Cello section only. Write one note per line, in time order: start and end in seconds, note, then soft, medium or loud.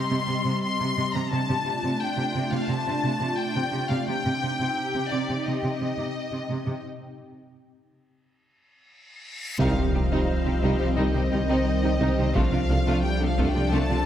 0.11 0.18 C3 soft
0.28 0.35 C3 soft
0.45 0.52 C3 medium
0.79 0.86 C3 soft
0.97 1.04 C3 medium
1.14 1.21 C3 soft
1.32 1.39 C3 medium
1.49 1.56 C3 soft
1.66 1.73 C3 soft
1.83 1.90 C3 medium
2.17 2.24 C3 soft
2.35 2.42 C3 medium
2.52 2.59 C3 soft
2.68 2.76 C3 medium
2.87 2.94 C3 soft
3.03 3.10 C3 soft
3.21 3.28 C3 medium
3.55 3.62 C3 soft
3.72 3.79 C3 medium
3.90 3.97 C3 soft
4.08 4.14 C3 medium
4.25 4.32 C3 soft
4.42 4.49 C3 soft
4.59 4.66 C3 medium
4.94 5.01 C3 soft
5.12 5.19 C3 soft
5.29 5.36 C3 soft
5.47 5.53 C3 medium
5.63 5.70 C3 soft
5.81 5.87 C3 soft
5.98 6.05 C3 soft
6.32 6.39 C3 soft
6.48 6.55 C3 soft
6.66 6.73 C3 soft
9.59 9.75 C3 medium
9.77 9.84 C3 soft
9.94 10.01 C3 soft
10.11 10.18 C3 soft
10.45 10.52 C3 soft
10.62 10.69 C3 soft
10.80 10.87 C3 soft
10.96 11.03 C3 soft
11.14 11.21 C3 soft
11.32 11.39 C3 soft
11.49 11.56 C3 soft
11.84 11.90 C3 soft
12.00 12.07 C3 medium
12.18 12.25 C3 soft
12.35 12.42 C3 medium
12.52 12.59 C3 soft
12.69 12.76 C3 soft
12.86 12.93 C3 soft
13.21 13.28 C3 soft
13.39 13.45 C3 medium
13.56 13.63 C3 soft
13.73 13.80 C3 medium
13.90 13.97 C3 soft